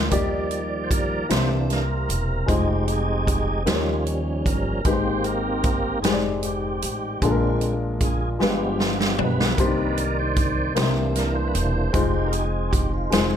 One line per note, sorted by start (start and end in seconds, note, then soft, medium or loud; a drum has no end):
0.00 0.10 A#3 medium
0.00 0.14 D4 medium
0.00 0.13 F4 medium
0.00 0.13 A#4 medium
0.10 1.26 D#2 medium
0.10 1.28 D#3 medium
0.10 1.26 D#3 medium
0.10 1.26 F3 soft
0.10 2.45 G3 medium
0.10 1.26 G3 soft
0.10 1.10 A#3 medium
0.10 2.46 A#3 medium
0.10 1.10 D#4 medium
0.10 1.11 G4 medium
0.10 1.29 D5 medium
0.10 1.11 D5 medium
0.10 1.26 D5 medium
0.10 kick medium
0.10 closed hi-hat medium
0.51 closed hi-hat soft
0.84 0.91 C5 medium
0.91 1.32 A#4 medium
0.91 kick medium
0.91 closed hi-hat medium
1.29 2.05 C2 medium
1.29 2.44 C3 medium
1.29 2.47 E3 medium
1.29 1.84 E3 soft
1.29 2.28 A#3 medium
1.29 1.84 A#3 soft
1.29 3.64 C4 medium
1.29 2.29 E4 medium
1.29 2.29 G4 medium
1.29 2.29 C5 medium
1.29 1.50 C5 medium
1.29 snare medium
1.29 closed hi-hat medium
1.33 1.84 D4 medium
1.70 2.52 A#4 medium
1.70 snare soft
1.70 closed hi-hat soft
2.09 2.45 E1 medium
2.09 closed hi-hat medium
2.46 3.63 F1 medium
2.46 3.66 F3 medium
2.46 3.46 G#3 medium
2.46 3.66 G#3 medium
2.46 3.63 G#3 soft
2.46 3.47 D#4 medium
2.46 7.17 D#4 medium
2.46 3.63 D#4 medium
2.46 3.47 F4 medium
2.46 3.63 G4 soft
2.46 3.47 C5 medium
2.46 kick medium
2.46 closed hi-hat medium
2.51 2.68 G#4 medium
2.88 closed hi-hat soft
2.92 3.71 G#4 medium
3.27 kick medium
3.27 closed hi-hat medium
3.65 4.41 D#2 medium
3.65 4.81 D#3 medium
3.65 4.81 F3 soft
3.65 4.83 G3 medium
3.65 4.82 G3 soft
3.65 4.65 A#3 medium
3.65 4.84 A#3 medium
3.65 4.83 C#4 medium
3.65 4.81 C#4 medium
3.65 4.65 D#4 medium
3.65 4.05 F4 medium
3.65 4.66 G4 medium
3.65 3.73 C5 medium
3.65 snare medium
3.65 closed hi-hat medium
3.74 4.69 C#5 medium
4.06 closed hi-hat soft
4.46 4.82 G1 medium
4.46 4.87 A#4 medium
4.46 kick medium
4.46 closed hi-hat medium
4.85 6.03 G#1 medium
4.85 6.00 G#2 soft
4.85 5.84 G#3 medium
4.85 6.00 A#3 soft
4.85 7.19 C4 medium
4.85 6.00 C4 medium
4.85 5.84 D#4 medium
4.85 5.99 G4 soft
4.85 5.85 G4 medium
4.85 4.93 B4 medium
4.85 5.26 C5 medium
4.85 kick medium
4.85 closed hi-hat medium
4.93 5.88 C5 medium
5.24 5.99 A#4 medium
5.24 closed hi-hat soft
5.64 kick medium
5.64 closed hi-hat medium
6.02 6.78 F1 medium
6.02 7.02 G#3 medium
6.02 7.02 D#4 medium
6.02 7.03 G4 medium
6.02 6.20 G#4 medium
6.02 6.11 C5 soft
6.02 snare medium
6.02 closed hi-hat medium
6.12 7.07 D5 medium
6.43 7.25 G4 medium
6.43 closed hi-hat medium
6.82 7.19 A1 medium
6.82 closed hi-hat medium
7.21 8.36 A#1 medium
7.21 8.37 A#2 medium
7.21 7.74 D3 soft
7.21 7.74 G#3 soft
7.21 8.21 G#3 medium
7.21 8.38 A#3 medium
7.21 7.75 C4 medium
7.21 8.38 D4 medium
7.21 8.21 D4 medium
7.21 9.55 F4 medium
7.21 8.21 F4 medium
7.21 7.60 F4 medium
7.21 kick medium
7.21 closed hi-hat medium
7.25 7.30 A4 medium
7.31 8.25 A#4 medium
7.61 closed hi-hat soft
8.01 8.20 G#4 medium
8.01 kick medium
8.01 closed hi-hat medium
8.21 8.30 G#4 medium
8.39 9.15 G1 medium
8.39 9.54 G2 medium
8.39 9.54 F3 soft
8.39 9.38 G#3 medium
8.39 9.55 G#3 soft
8.39 9.57 B3 medium
8.39 9.55 B3 medium
8.39 9.39 F4 medium
8.39 9.57 G4 medium
8.39 9.39 G4 medium
8.39 8.82 G4 medium
8.39 9.40 B4 medium
8.39 snare soft
8.79 9.00 F4 medium
8.79 snare medium
9.00 9.18 G4 medium
9.00 snare medium
9.19 9.55 B1 medium
9.19 10.01 B4 medium
9.19 floor tom medium
9.41 snare medium
9.57 10.72 C2 medium
9.57 10.72 C3 medium
9.57 10.73 D#3 soft
9.57 11.92 G3 medium
9.57 10.56 A#3 medium
9.57 11.92 C4 medium
9.57 9.65 D4 soft
9.57 10.75 D#4 medium
9.57 10.57 G4 medium
9.57 9.96 A#4 soft
9.57 10.58 C5 medium
9.57 10.74 D5 medium
9.57 kick medium
9.57 closed hi-hat medium
9.65 10.60 D#4 medium
9.97 10.18 A#4 medium
9.97 closed hi-hat soft
10.19 10.93 C5 medium
10.36 kick medium
10.36 closed hi-hat medium
10.75 11.51 C2 medium
10.75 11.90 C3 medium
10.75 11.91 E3 medium
10.75 11.74 A#3 medium
10.75 11.91 A#3 soft
10.75 11.91 D4 medium
10.75 10.82 D#4 soft
10.75 11.93 E4 medium
10.75 11.75 G4 medium
10.75 11.75 C5 medium
10.75 snare loud
10.75 closed hi-hat medium
10.82 11.78 E4 medium
11.15 11.36 A#4 medium
11.15 snare soft
11.15 closed hi-hat soft
11.35 11.48 C5 medium
11.47 11.55 B4 medium
11.54 11.91 E1 medium
11.54 12.28 C5 medium
11.54 closed hi-hat medium
11.92 13.08 F1 medium
11.92 13.37 F3 medium
11.92 12.92 G#3 medium
11.92 12.46 G#3 soft
11.92 13.37 G#3 medium
11.92 13.37 C4 medium
11.92 12.93 D#4 medium
11.92 12.46 D#4 medium
11.92 13.37 D#4 medium
11.92 12.93 F4 medium
11.92 12.45 G4 medium
11.92 12.93 C5 medium
11.92 kick medium
11.92 closed hi-hat medium
12.27 12.34 A#4 medium
12.32 12.73 G#4 medium
12.32 closed hi-hat soft
12.71 12.92 G4 medium
12.71 kick medium
12.71 closed hi-hat medium
12.94 13.13 F4 medium
13.10 13.37 F1 medium
13.10 13.37 G#3 medium
13.10 13.37 D#4 medium
13.10 13.37 F4 medium
13.10 13.33 G#4 medium
13.10 13.37 C5 medium
13.10 snare loud
13.10 closed hi-hat medium